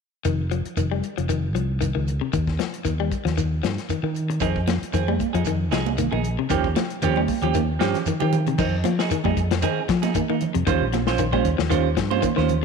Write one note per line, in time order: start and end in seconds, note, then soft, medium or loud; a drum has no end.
0.25 0.61 F1 medium
0.25 0.41 D#3 medium
0.25 closed hi-hat medium
0.25 shekere medium
0.51 0.67 F3 medium
0.51 closed hi-hat soft
0.51 shekere soft
0.65 muted fingered electric bass stroke soft
0.65 closed hi-hat soft
0.77 1.00 F1 medium
0.77 0.86 D#3 medium
0.77 closed hi-hat medium
0.77 shekere medium
0.92 1.07 G3 medium
1.03 closed hi-hat soft
1.03 shekere soft
1.18 1.56 F1 medium
1.18 1.25 F3 medium
1.18 closed hi-hat soft
1.29 1.45 D#3 medium
1.29 closed hi-hat medium
1.29 shekere medium
1.55 1.92 C2 medium
1.55 1.71 F3 medium
1.55 closed hi-hat soft
1.55 shekere soft
1.81 1.89 D#3 medium
1.81 closed hi-hat medium
1.81 shekere medium
1.95 2.19 C#2 medium
1.95 2.11 D#3 medium
2.07 closed hi-hat soft
2.07 shekere soft
2.21 2.29 C3 medium
2.33 2.57 D#2 medium
2.33 2.49 D#3 medium
2.33 kick medium
2.33 closed hi-hat medium
2.33 shekere medium
2.47 kick medium
2.47 snare soft
2.59 2.75 F3 medium
2.59 snare medium
2.59 closed hi-hat soft
2.59 shekere soft
2.74 closed hi-hat soft
2.85 3.09 D#2 medium
2.85 2.93 D#3 medium
2.85 closed hi-hat medium
2.85 shekere medium
3.00 3.15 G3 medium
3.12 kick medium
3.12 closed hi-hat soft
3.12 shekere soft
3.25 3.60 D#2 medium
3.25 3.32 F3 medium
3.25 snare soft
3.25 closed hi-hat soft
3.38 3.53 D#3 medium
3.38 closed hi-hat medium
3.38 shekere medium
3.63 3.76 G2 medium
3.63 3.79 F3 medium
3.63 snare medium
3.63 closed hi-hat soft
3.63 shekere soft
3.78 snare soft
3.78 closed hi-hat soft
3.89 3.99 D#3 medium
3.89 muted fingered electric bass stroke soft
3.89 closed hi-hat medium
3.89 shekere medium
4.03 4.38 D#3 medium
4.03 4.19 D#3 medium
4.15 closed hi-hat soft
4.15 shekere soft
4.30 muted clean electric guitar stroke medium
4.30 closed hi-hat soft
4.40 4.78 F2 medium
4.40 4.58 D#3 medium
4.40 4.57 C4 medium
4.40 4.58 D#4 medium
4.40 4.58 G#4 medium
4.40 kick medium
4.40 closed hi-hat medium
4.40 high conga soft
4.40 shekere medium
4.56 kick medium
4.67 4.83 F3 medium
4.67 snare medium
4.67 closed hi-hat soft
4.67 high conga medium
4.67 shekere soft
4.82 muted fingered electric bass stroke soft
4.82 closed hi-hat soft
4.93 5.17 F2 medium
4.93 5.02 D#3 medium
4.93 5.10 C4 medium
4.93 5.10 G#4 medium
4.93 muted clean electric guitar stroke medium
4.93 closed hi-hat medium
4.93 high conga soft
4.93 shekere medium
5.08 5.24 G3 medium
5.08 high conga medium
5.19 kick medium
5.19 closed hi-hat soft
5.19 high conga medium
5.19 shekere soft
5.33 5.72 F2 medium
5.33 5.42 F3 medium
5.33 5.49 D#4 soft
5.33 5.48 G#4 medium
5.33 closed hi-hat soft
5.45 5.62 D#3 medium
5.45 closed hi-hat medium
5.45 high conga soft
5.45 shekere medium
5.71 6.08 C2 medium
5.71 5.89 F3 medium
5.71 5.88 D#4 medium
5.71 5.88 G#4 medium
5.71 snare medium
5.71 closed hi-hat soft
5.71 shekere soft
5.86 high conga medium
5.98 6.07 D#3 medium
5.98 closed hi-hat medium
5.98 high conga medium
5.98 shekere medium
6.11 6.36 A#1 medium
6.11 6.28 D#3 medium
6.11 6.27 D#4 soft
6.11 6.27 G#4 medium
6.11 high conga medium
6.24 closed hi-hat soft
6.24 shekere soft
6.39 6.46 C3 medium
6.49 6.74 D#2 medium
6.49 6.66 D#3 medium
6.49 6.66 F3 medium
6.49 6.66 C4 medium
6.49 6.67 C#4 medium
6.49 6.67 G4 medium
6.49 kick medium
6.49 closed hi-hat medium
6.49 high conga soft
6.49 shekere medium
6.64 kick medium
6.76 6.92 F3 medium
6.76 snare medium
6.76 closed hi-hat soft
6.76 high conga medium
6.76 shekere soft
6.90 closed hi-hat soft
7.02 7.26 D#2 medium
7.02 7.11 D#3 medium
7.02 7.19 F3 medium
7.02 7.19 C4 medium
7.02 7.19 C#4 medium
7.02 7.19 G4 medium
7.02 closed hi-hat medium
7.02 high conga soft
7.02 shekere medium
7.16 7.33 G3 medium
7.16 high conga medium
7.28 kick medium
7.28 open hi-hat medium
7.28 high conga medium
7.28 shekere soft
7.42 7.77 D#2 medium
7.42 7.50 F3 medium
7.42 7.58 C4 soft
7.42 7.58 C#4 soft
7.42 7.57 G4 medium
7.42 closed hi-hat soft
7.54 7.71 D#3 medium
7.54 closed hi-hat medium
7.54 high conga medium
7.54 shekere medium
7.79 7.93 G2 medium
7.79 7.96 F3 medium
7.79 7.97 F3 medium
7.79 7.96 C4 medium
7.79 7.97 C#4 medium
7.79 7.97 G4 medium
7.79 snare medium
7.79 closed hi-hat soft
7.79 shekere soft
7.94 snare soft
7.94 closed hi-hat soft
7.94 low conga medium
8.06 8.16 D#3 medium
8.06 muted fingered electric bass stroke soft
8.06 closed hi-hat medium
8.06 low conga medium
8.06 shekere medium
8.20 8.56 D#3 medium
8.20 8.37 D#3 medium
8.20 8.36 C4 soft
8.20 8.35 G4 medium
8.20 muted clean electric guitar stroke medium
8.20 low conga medium
8.33 closed hi-hat soft
8.33 low conga medium
8.33 shekere soft
8.47 8.55 C3 medium
8.47 closed hi-hat soft
8.47 low conga medium
8.58 8.82 F2 medium
8.58 8.75 D#3 medium
8.58 8.75 C4 medium
8.58 8.75 D#4 medium
8.58 muted clean electric guitar stroke medium
8.58 kick loud
8.58 crash medium
8.58 high conga soft
8.58 low conga medium
8.58 shekere medium
8.84 9.01 F3 medium
8.84 9.09 F3 medium
8.84 closed hi-hat medium
8.84 high conga medium
8.84 shekere soft
8.99 9.15 D#4 soft
8.99 9.14 G#4 medium
8.99 snare medium
9.11 9.20 D#3 medium
9.11 muted fingered electric bass stroke soft
9.11 closed hi-hat medium
9.11 high conga soft
9.11 shekere medium
9.24 9.36 F2 medium
9.24 9.41 G3 medium
9.24 9.40 D#4 soft
9.24 9.39 G#4 medium
9.24 kick medium
9.24 high conga medium
9.37 9.61 F2 medium
9.37 kick medium
9.37 closed hi-hat medium
9.37 shekere soft
9.51 9.59 F3 medium
9.51 snare medium
9.51 closed hi-hat soft
9.62 9.79 D#3 medium
9.62 9.79 C4 medium
9.62 9.79 D#4 medium
9.62 9.80 G#4 medium
9.62 closed hi-hat medium
9.62 high conga soft
9.62 shekere medium
9.89 10.13 F3 medium
9.89 10.05 F3 medium
9.89 kick medium
9.89 snare medium
9.89 closed hi-hat medium
9.89 shekere soft
10.02 10.18 D#4 soft
10.02 10.17 G#4 medium
10.02 snare soft
10.02 closed hi-hat medium
10.02 high conga medium
10.15 10.24 D#3 medium
10.15 kick medium
10.15 closed hi-hat medium
10.15 high conga medium
10.15 shekere medium
10.30 10.45 D#3 medium
10.30 10.44 D#4 soft
10.30 high conga medium
10.41 closed hi-hat medium
10.41 low conga medium
10.41 shekere soft
10.54 10.66 F2 medium
10.54 10.62 C3 medium
10.54 closed hi-hat soft
10.67 10.80 D#2 loud
10.67 10.82 D#3 medium
10.67 10.83 G3 medium
10.67 10.83 C#4 medium
10.67 10.84 F4 medium
10.67 10.84 C5 medium
10.67 kick medium
10.67 closed hi-hat medium
10.67 high conga soft
10.67 low conga medium
10.67 shekere medium
10.81 11.41 A#1 medium
10.93 11.09 F3 medium
10.93 snare soft
10.93 closed hi-hat soft
10.93 high conga medium
10.93 shekere soft
11.07 11.23 C#4 soft
11.07 11.22 F4 medium
11.07 11.22 C5 medium
11.07 snare medium
11.18 11.28 D#3 medium
11.18 closed hi-hat medium
11.18 high conga soft
11.18 shekere medium
11.32 11.49 G3 medium
11.32 11.48 C#4 soft
11.32 11.48 F4 soft
11.32 11.48 C5 medium
11.32 kick medium
11.32 high conga medium
11.45 11.58 D#2 medium
11.45 kick medium
11.45 closed hi-hat soft
11.45 shekere soft
11.58 11.94 D#2 medium
11.58 11.66 F3 medium
11.58 snare medium
11.69 11.86 D#3 medium
11.69 11.87 G3 medium
11.69 11.87 C#4 medium
11.69 11.87 F4 medium
11.69 11.88 C5 medium
11.69 closed hi-hat medium
11.69 high conga soft
11.69 shekere medium
11.97 12.21 G2 medium
11.97 12.13 F3 medium
11.97 kick medium
11.97 snare medium
11.97 closed hi-hat soft
11.97 shekere soft
12.11 12.26 C#4 soft
12.11 12.26 F4 soft
12.11 12.26 C5 medium
12.11 high conga medium
12.22 12.31 D#3 medium
12.22 kick medium
12.22 closed hi-hat medium
12.22 high conga medium
12.22 shekere medium
12.36 12.65 D#2 medium
12.36 12.52 D#3 medium
12.36 12.53 C#4 soft
12.36 12.52 F4 medium
12.36 12.52 C5 medium
12.36 snare soft
12.36 high conga medium
12.48 closed hi-hat soft
12.48 low conga medium
12.48 shekere soft